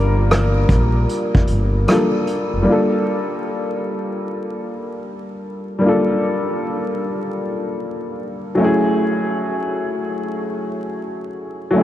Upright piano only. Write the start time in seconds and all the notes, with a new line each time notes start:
Already playing: G3 A#3 D4 F4 A#4
1.87 G3 A#3 D4 F4
1.92 A4
2.62 G3 A#3
2.67 D4 F4
2.72 A4
5.79 G3 A#3
5.84 D4 F4
5.88 A4
8.55 F#3 A3
8.59 C#4 E4
8.64 G#4
11.71 F#3 A3
11.76 C#4 E4